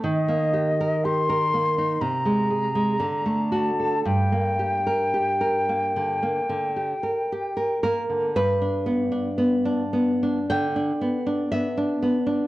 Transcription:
<<
  \new Staff \with { instrumentName = "Flute" } { \time 4/4 \key g \minor \tempo 4 = 58 ees''4 c'''4 bes''4. a''8 | g''2.~ g''8 r8 | \key g \major r1 | }
  \new Staff \with { instrumentName = "Nylon-string guitar" } { \time 4/4 \key g \minor << { r1 | r2. r8 bes'8 | \key g \major b'2 g''4 e''4 | } \\ { ees16 bes16 g'16 bes'16 g'16 bes'16 bes16 ees'16 c16 aes16 aes'16 aes16 d16 a16 fis'16 a'16 | g,16 bes16 g'16 bes'16 g'16 bes'16 bes16 d16 bes16 d16 g'16 bes'16 g'16 bes'16 bes16 d16 | g,16 d'16 b16 d'16 b16 d'16 b16 d'16 d16 d'16 b16 d'16 b16 d'16 b16 d'16 | } >> }
>>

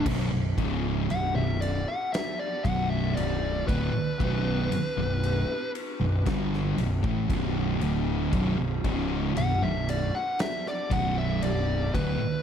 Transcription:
<<
  \new Staff \with { instrumentName = "Lead electric guitar" } { \time 4/4 \key b \minor \tempo 4 = 58 r4 fis''16 e''16 d''16 fis''16 e''16 d''16 fis''16 e''16 d''8 b'8~ | b'4. r2 r8 | r4 fis''16 e''16 d''16 fis''16 e''16 d''16 fis''16 e''16 d''8 b'8 | }
  \new Staff \with { instrumentName = "Distorted electric guitar" } { \clef bass \time 4/4 \key b \minor <b,, fis,>16 <b,, fis,>16 <cis, gis, cis>8 <b,, fis,>16 <b,, fis,>8 r8. <b,, fis, b,>8 <b,, fis,>8 <d, a,>16 r16 | <b,, fis, b,>8 r16 <b,, fis,>8 r8 <b,, fis,>16 <g, d g>8 <b,, fis,>16 <a, e>16 <b,, fis, b,>8 <d, a, d>8 | <b,, fis,>16 <b,, fis,>16 <cis, gis, cis>8 <b,, fis,>16 <b,, fis,>8 r8. <b,, fis, b,>8 <b,, fis,>8 <d, a,>16 r16 | }
  \new Staff \with { instrumentName = "Distorted electric guitar" } { \clef bass \time 4/4 \key b \minor <b,, fis,>16 <b,, fis,>16 <cis, gis, cis>8 <b,, fis,>16 <b,, fis,>8 r8. <b,, fis, b,>8 <b,, fis,>8 <d, a,>16 r16 | <b,, fis, b,>8 r16 <b,, fis,>8 r8 <b,, fis,>16 <g, d g>8 <b,, fis,>16 <a, e>16 <b,, fis, b,>8 <d, a, d>8 | <b,, fis,>16 <b,, fis,>16 <cis, gis, cis>8 <b,, fis,>16 <b,, fis,>8 r8. <b,, fis, b,>8 <b,, fis,>8 <d, a,>16 r16 | }
  \new Staff \with { instrumentName = "Fingered electric bass" } { \clef bass \time 4/4 \key b \minor b,,,16 b,,,16 cis,,8 b,,,16 b,,,8 r8. b,,,8 b,,,8 d,,16 r16 | b,,,8 r16 b,,,8 r8 b,,,16 g,,8 b,,,16 a,,16 b,,,8 d,,8 | b,,,16 b,,,16 cis,,8 b,,,16 b,,,8 r8. b,,,8 b,,,8 d,,16 r16 | }
  \new DrumStaff \with { instrumentName = "Drums" } \drummode { \time 4/4 <cymc bd>8 <bd cymr>8 cymr8 cymr8 <cymr sn>8 <bd cymr>8 cymr8 <bd cymr>8 | <bd cymr>8 cymr8 cymr8 cymr8 <bd cymr sn>16 sn16 cymr16 bd16 <bd cymr>8 cymr8 | <bd cymr>8 <bd cymr>8 cymr8 cymr8 <cymr sn>16 sn16 <bd cymr>8 cymr8 <bd cymr>8 | }
>>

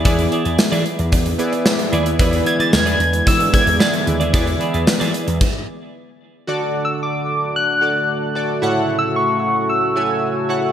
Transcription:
<<
  \new Staff \with { instrumentName = "Soft synth lead" } { \time 4/4 \key e \mixolydian \tempo 4 = 112 r1 | r8 gis'''16 a'''16 gis'''4 e'''8 gis'''4 r8 | r1 | \tuplet 3/2 { r4 e'''8 } d'''4 fis'''4. r8 |
\tuplet 3/2 { r4 e'''8 } cis'''4 e'''4. r8 | }
  \new Staff \with { instrumentName = "Clean electric guitar" } { \time 4/4 \key e \mixolydian <e' gis' d''>8 <e' gis' d''>16 <e' gis' d''>16 r16 <e' gis' d''>8 r4. r16 <e' gis' d''>8 | <e' gis' d''>8 <e' gis' d''>16 <e' gis' d''>16 r16 <e' gis' d''>8 r4 r16 <e' gis' d''>8 r16 <e' gis' d''>16 | <e' gis' d''>8 <e' gis' d''>16 <e' gis' d''>16 r16 <e' gis' d''>8 r2 r16 | r1 |
r1 | }
  \new Staff \with { instrumentName = "Synth keys" } { \time 4/4 \key e \mixolydian << { <b e' gis' d''>2 r8 <b e' gis' d''>4 <b e' gis' d''>8 | <b e' gis' b'>2 r8 <b e' gis' d''>4 <b e' gis' d''>8 | <b e' gis' d''>2 r2 | <fis' a' d''>2 r8 <fis' a' d''>4 <fis' a' d''>8 |
<e' fis' a' cis'' fis''>2 r8 <e' fis' a' cis'' gis''>4 <e' fis' a' cis'' fis''>8 | } \\ { e4. r2 r8 | e4. r2 r8 | e4. r2 r8 | d4. r2 r8 |
a,4. r2 r8 | } >> }
  \new Staff \with { instrumentName = "Analog synth pad" } { \clef bass \time 4/4 \key e \mixolydian << { r1 | <gis e'>1~ | <gis e'>2 r2 | <a fis'>1~ |
<a fis'>1 | } \\ { r1 | d1~ | d2 r2 | d1 |
cis1 | } >> }
  \new Staff \with { instrumentName = "Slap bass" } { \clef bass \time 4/4 \key e \mixolydian e,8 r16 e,16 r16 e16 r16 e,16 e,8 r4 dis,8 | e,8 r16 e16 e,8 e,8 e8 r16 e,16 r8 dis,8 | e,8 r16 e,16 r16 e16 r16 e,16 r2 | r1 |
r1 | }
  \new DrumStaff \with { instrumentName = "Drums" } \drummode { \time 4/4 <hh bd>16 hh16 hh16 hh16 <sn tamb>16 hh16 hh16 hh16 <hh bd>16 hh16 hh16 hh16 <sn tamb>16 hh16 hh16 hh16 | <hh bd>16 hh16 hh16 hh16 <sn tamb>16 hh16 hh16 hh16 <hh bd>16 hh16 <hh bd>16 hh16 <sn tamb>16 hh16 hh16 hh16 | <hh bd>16 hh16 hh16 hh16 <sn tamb>16 hh16 hh16 hh16 <cymc bd>4 r4 | r4 r4 r4 r4 |
r4 r4 r4 r4 | }
>>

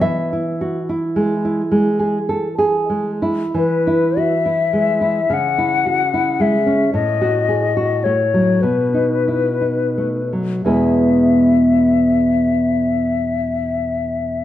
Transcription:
<<
  \new Staff \with { instrumentName = "Flute" } { \time 6/8 \key e \major \tempo 4. = 34 r2. | b'8 e''4 fis''4 e''8 | dis''4 cis''8 b'4. | e''2. | }
  \new Staff \with { instrumentName = "Nylon-string guitar" } { \time 6/8 \key e \major << { e''4. r4. | r2. | r2. | <e, b, gis b e' gis'>2. | } \\ { e16 e'16 fis'16 e'16 gis16 e'16 gis16 gis'16 a'16 gis'16 gis16 e'16 | e16 e'16 fis'16 e'16 gis16 e'16 cis16 e'16 fis'16 e'16 gis16 cis'16 | a,16 fis'16 gis'16 fis'16 a16 fis16 b,16 dis'16 e'16 dis'16 a16 fis16 | r2. | } >> }
>>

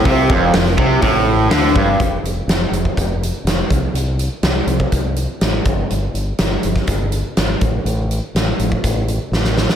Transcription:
<<
  \new Staff \with { instrumentName = "String machine" } { \time 4/4 \key f \lydian \tempo 4 = 123 <c' f' c'' f''>1 | r1 | r1 | r1 |
r1 | }
  \new Staff \with { instrumentName = "Overdriven electric guitar" } { \clef bass \time 4/4 \key f \lydian c8 f,8 f,8 c8 a,4 d8 g,8 | r1 | r1 | r1 |
r1 | }
  \new Staff \with { instrumentName = "Overdriven electric guitar" } { \clef bass \time 4/4 \key f \lydian c8 f,8 f,8 c8 a,4 d8 g,8 | r1 | r1 | r1 |
r1 | }
  \new Staff \with { instrumentName = "Fingered electric bass" } { \clef bass \time 4/4 \key f \lydian c,8 f,,8 f,,8 c,8 a,,4 d,8 g,,8 | f,,8 f,,8 f,,8 f,,8 f,,4 f,,8 c,8 | c,4 c,8 c,8 c,4 a,,8 g,,8 | g,,8 g,,8 g,,8 g,,8 g,,4 gis,,8 a,,8 |
a,,4 a,,8 a,,8 a,,4 a,,4 | }
  \new DrumStaff \with { instrumentName = "Drums" } \drummode { \time 4/4 <hho bd>8 bd8 <hho sn>16 sn16 bd8 <hho bd>4 <hho sn>8 bd8 | <hh bd>8 hh8 <hh sn>8 hh16 bd16 <hh bd>8 hh8 <hh sn>8 <hh bd>8 | hh8 hh8 <hh sn>8 hh16 bd16 <hh bd>8 hh8 <hh sn>8 <hh bd>8 | hh8 hh8 <hh sn>8 hh16 <bd sn>16 <hh bd>8 hh8 <hh sn>8 <hh bd>8 |
hh8 hh8 <hh sn>8 hh16 bd16 <hh bd>8 hh8 sn16 sn16 sn16 sn16 | }
>>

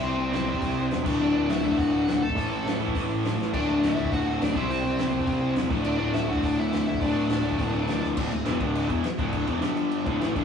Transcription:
<<
  \new Staff \with { instrumentName = "Lead electric guitar" } { \time 4/4 \key d \major \tempo 4 = 206 <c' c''>2. r4 | <d' d''>8 <d' d''>8 <e' e''>4 <fis' fis''>4. <a' a''>8~ | <a' a''>4. r2 r8 | <d' d''>8 <d' d''>8 <e' e''>4 <fis' fis''>8 <fis' fis''>8 <d' d''>8 <e' e''>8 |
<c' c''>2. r4 | <d' d''>8 <d' d''>8 <e' e''>8 <fis' fis''>8 <d' d''>8 <e' e''>4 <e' e''>8 | <d' d''>2.~ <d' d''>8 r8 | r1 |
r1 | }
  \new Staff \with { instrumentName = "Overdriven electric guitar" } { \clef bass \time 4/4 \key d \major <c g c' e' g' c''>4 <c g c' e' g' c''>2~ <c g c' e' g' c''>8 <d, a, d a fis'>8~ | <d, a, d a fis'>4 <d, a, d a fis'>2~ <d, a, d a fis'>8 r8 | <a, e a cis' e' a'>4. <a, e a cis' e' a'>2~ <a, e a cis' e' a'>8 | <d, a, d a fis'>4. <d, a, d a fis'>2 <c g c' e' g' c''>8~ |
<c g c' e' g' c''>4 <c g c' e' g' c''>2~ <c g c' e' g' c''>8 <d, a, d a fis'>8~ | <d, a, d a fis'>4 <d, a, d a fis'>2~ <d, a, d a fis'>8 r8 | <d, a, d a fis'>4. <d, a, d a fis'>2~ <d, a, d a fis'>8 | <d, a, d>8 <d, a,>8 <e, b, e>8 <d, a, d>4 <e, b, e>8 r8 <d, a, d>8~ |
<d, a, d>8 <e, b, e>8 <g, d g>4. <d, a, d>8 <a, e a>8 <d, a, d>8 | }
  \new Staff \with { instrumentName = "Distorted electric guitar" } { \clef bass \time 4/4 \key d \major <c g c'>4. <c g c'>2 <d, a, d>8~ | <d, a, d>4. <d, a, d>2 r8 | <a, e a>2 <a, e a>2 | <d, a, d>2 <d, a, d>4. <c g c'>8~ |
<c g c'>4. <c g c'>2 <d, a, d>8~ | <d, a, d>4. <d, a, d>2 r8 | <d, a, d>2 <d, a, d>2 | <d, a, d>8 <d, a,>8 <e, b, e>8 <d, a, d>4 <e, b, e>8 r8 <d, a, d>8~ |
<d, a, d>8 <e, b, e>8 <g, d g>4. <d, a, d>8 <a, e a>8 <d, a, d>8 | }
  \new Staff \with { instrumentName = "Picked electric bass" } { \clef bass \time 4/4 \key d \major c,8 c,8 c,8 c,8 c,8 c,8 e,,8 d,,8 | d,,8 d,,8 d,,8 d,8 d,,8 d,,8 d,,8 d,,8 | a,,8 a,,8 a,,8 a,8 a,,8 a,,8 a,,8 a,,8 | d,,8 d,,8 d,,8 d,8 d,,8 d,,8 d,,8 c,8 |
c,8 c,8 c,8 c,8 c,8 c,8 e,,8 d,,8 | d,,8 d,,8 d,,8 d,8 d,,8 d,,8 d,,8 d,,8 | d,,8 d,,8 d,,8 d,8 d,,8 d,,8 d,,8 d,,8 | d,,8 d,,8 e,,8 d,,4 e,,8 r8 d,,8~ |
d,,8 e,,8 g,,4. d,,8 a,,8 d,,8 | }
  \new DrumStaff \with { instrumentName = "Drums" } \drummode { \time 4/4 r4 <hho sn>8. bd16 <hho bd>4 <hho sn>8 <cymc bd>8 | r4 <hho sn>8. bd16 <hho bd>4 <hho sn>8. bd16 | <hho bd>4 <hho sn>8. bd16 <hho bd>4 <hho sn>8 sn8 | <cymc bd>4 <hho sn>8. bd16 <hho bd>4 <hho sn>8 bd8 |
hho4 <hho sn>8. bd16 <hho bd>4 <hho sn>8 bd8 | cymc4 <hho sn>8. bd16 <hho bd>4 <hho sn>8. bd16 | <hho bd>4 <hho sn>8. bd16 <hho bd>4 <hho sn>8 sn8 | <cymc bd>8 cymc8 <cymc sn>8 <cymc bd>8 cymc8 <cymc bd>8 <cymc sn>8 <cymc bd>8 |
<cymc bd>8 <cymc bd>8 <cymc sn>8 cymc8 cymc8 <cymc bd>8 <cymc sn>8 <cymc bd>8 | }
>>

